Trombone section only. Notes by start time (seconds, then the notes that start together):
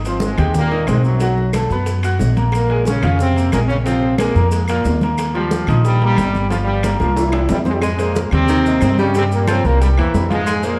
0.06 F3 F4
0.24 G#2 G#3
0.56 A#2 A#3
0.88 G#2 G#3
1.05 F#2 F#3
2.55 A#2 A#3
2.87 C#3 C#4
3.20 C3 C4
3.52 A#2 A#3
3.67 C#3 C#4
3.85 C3 C4
4.17 A#2 A#3
4.51 G#2 G#3
4.67 A#2 A#3
5.34 F3 F4
5.84 G2 G3
6.05 G2 G3
6.49 F3 F4
6.65 G2 G3
6.99 F3 F4
7.15 E3 E4
7.50 G2 G3
7.67 G#2 G#3
7.73 G3
7.80 G#2 G#3
7.99 A#2 A#3
8.33 C3 C4
8.99 C#3 C#4
9.17 C3 C4
9.33 A#2 A#3
9.49 C3 C4
9.66 A#2 A#3
9.81 G2 G3
9.98 E3 E4
10.15 G2 G3
10.31 G#2 G#3
10.65 A#2 A#3